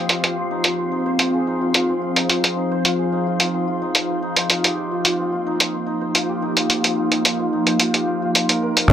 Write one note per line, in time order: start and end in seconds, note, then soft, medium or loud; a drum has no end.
0.00 8.93 F3 medium
0.00 1.83 A#3 medium
0.00 0.23 C4 medium
0.00 8.92 C4 medium
0.00 0.51 D#4 medium
0.00 1.40 G4 medium
0.00 0.78 C5 medium
0.00 2.34 D#5 medium
0.00 1.48 F5 medium
0.00 8.92 C6 medium
0.09 0.36 F4 medium
0.09 closed hi-hat soft
0.23 1.88 C4 medium
0.23 closed hi-hat soft
0.31 4.49 C4 medium
0.31 4.50 G#4 medium
0.37 0.64 F4 medium
0.51 0.91 D#4 medium
0.64 1.19 F4 medium
0.64 closed hi-hat medium
0.78 1.05 C5 medium
0.92 1.47 D#4 medium
1.06 2.44 C5 medium
1.19 1.61 F4 medium
1.19 closed hi-hat medium
1.34 8.93 D#4 medium
1.34 2.99 G#4 medium
1.47 2.16 D#4 medium
1.47 4.50 C5 medium
1.61 1.74 F4 medium
1.74 2.01 F4 medium
1.74 closed hi-hat medium
1.89 3.54 C4 medium
2.02 2.29 F4 medium
2.16 2.56 D#4 medium
2.29 2.84 F4 medium
2.44 2.71 C5 medium
2.44 closed hi-hat soft
2.57 3.12 D#4 medium
2.71 4.09 C5 medium
2.85 3.26 F4 medium
2.85 closed hi-hat medium
2.99 4.70 G#4 medium
3.12 3.81 D#4 medium
3.27 3.40 F4 medium
3.40 3.67 F4 medium
3.40 closed hi-hat medium
3.54 5.19 C4 medium
3.68 3.95 F4 medium
3.82 4.22 D#4 medium
3.95 4.50 F4 medium
3.95 closed hi-hat medium
4.10 4.37 C5 medium
4.22 4.77 D#4 medium
4.36 5.73 C5 medium
4.36 closed hi-hat soft
4.50 4.91 F4 medium
4.50 closed hi-hat medium
4.64 6.28 G4 medium
4.64 closed hi-hat soft
4.77 5.46 D#4 medium
4.91 8.93 A#3 loud
4.91 5.04 F4 medium
5.05 5.32 F4 medium
5.05 closed hi-hat medium
5.19 6.84 C4 medium
5.32 5.59 F4 medium
5.47 5.86 D#4 loud
5.59 6.14 F4 medium
5.59 closed hi-hat medium
5.65 8.90 G4 medium
5.74 6.01 C5 medium
5.86 6.42 D#4 medium
6.01 7.39 C5 medium
6.14 6.56 F4 medium
6.14 closed hi-hat medium
6.29 7.94 G4 medium
6.42 7.11 D#4 medium
6.56 6.69 F4 medium
6.56 closed hi-hat soft
6.70 6.97 F4 medium
6.70 closed hi-hat medium
6.84 8.93 C4 medium
6.84 closed hi-hat soft
6.97 7.24 F4 medium
7.11 7.52 D#4 medium
7.25 7.80 F4 medium
7.25 closed hi-hat medium
7.39 7.67 C5 medium
7.53 8.93 D#4 medium
7.67 8.35 C5 medium
7.67 closed hi-hat soft
7.80 8.22 F4 medium
7.80 closed hi-hat medium
7.94 8.93 G4 medium
7.94 closed hi-hat soft
8.08 8.93 F5 medium
8.22 8.90 F4 medium
8.35 8.77 C5 medium
8.35 closed hi-hat medium
8.49 8.62 A#4 medium
8.49 closed hi-hat soft
8.62 8.93 A#4 medium
8.77 8.93 C5 medium
8.77 closed hi-hat soft